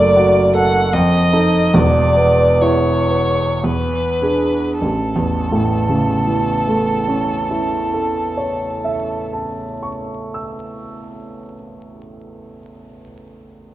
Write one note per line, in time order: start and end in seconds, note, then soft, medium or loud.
0.00 0.89 F#1 medium
0.00 0.89 F#2 medium
0.00 0.39 A3 soft
0.00 0.55 D5 medium
0.16 0.78 F#4 soft
0.55 0.94 A4 soft
0.55 0.95 F#5 medium
0.93 1.72 F2 medium
0.93 1.76 D#5 medium
1.33 1.70 D#4 soft
1.33 1.70 A4 soft
1.73 3.60 E1 medium
1.73 3.60 E2 medium
1.73 2.63 D5 medium
2.17 2.91 B3 soft
2.61 3.42 E4 soft
2.61 3.66 C#5 medium
3.11 3.64 B4 soft
3.64 4.78 E2 soft
3.64 4.77 B4 medium
4.22 4.77 D4 soft
4.22 4.78 G#4 soft
4.78 9.28 A1 soft
4.78 9.25 A4 medium
5.16 9.63 E2 soft
5.52 9.99 A2 soft
5.89 10.36 C#3 soft
6.27 10.74 E3 soft
6.67 11.14 A3 soft
7.08 11.55 C#4 soft
7.50 11.97 E4 soft
7.94 12.41 A4 soft
8.37 12.84 C#5 soft
8.84 13.01 E5 soft
9.33 13.02 A5 soft
9.83 13.02 C#6 soft
10.34 13.02 E6 soft